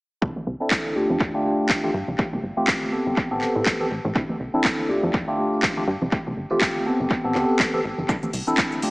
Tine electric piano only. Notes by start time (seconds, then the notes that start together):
0.21 C4 D4 E4 A4
0.60 C4 D4 E4 A4
0.95 A3 D4 F4 G4
1.34 A3 D4 F4 G4
1.83 A3 D4 F4 G4
2.18 A3 C4 F4 G4
2.57 A3 C4 F4 G4
2.92 B3 C4 G4 A4
3.31 B3 C4 G4 A4
3.80 B3 C4 G4 A4
4.15 C4 D4 E4 A4
4.54 C4 D4 E4 A4
4.89 A3 D4 F4 G4
5.27 A3 D4 F4 G4
5.77 A3 D4 F4 G4
6.12 A3 C4 F4 G4
6.50 A3 C4 F4 G4
6.86 B3 C4 G4 A4
7.24 B3 C4 G4 A4
7.73 B3 C4 G4 A4
8.08 C4 D4 E4 A4
8.47 C4 D4 E4 A4
8.82 A3 D4 F4 G4